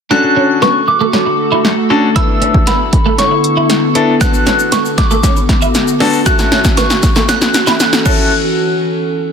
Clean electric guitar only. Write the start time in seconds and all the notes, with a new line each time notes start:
0.11 D4
0.24 muted clean electric guitar stroke
0.36 C#4
0.62 B3
0.88 muted clean electric guitar stroke
1.01 A3
1.13 C#4
1.26 muted clean electric guitar stroke
1.52 E4
1.90 D4
2.16 E4
2.29 muted clean electric guitar stroke
2.42 C#4
2.67 B3
2.93 muted clean electric guitar stroke
3.06 A3
3.19 C#4
3.31 muted clean electric guitar stroke
3.57 E4
3.95 D4
4.21 B3
4.34 muted clean electric guitar stroke
4.47 C#4
4.72 B3
4.98 muted clean electric guitar stroke
5.11 A3
5.24 C#4
5.37 muted clean electric guitar stroke
5.62 E4
6.01 D4
6.26 F#4
6.39 muted clean electric guitar stroke
6.52 C#4
6.77 B3
7.03 muted clean electric guitar stroke
7.16 A3
7.29 C#4
7.41 muted clean electric guitar stroke
7.67 E4
8.06 C#4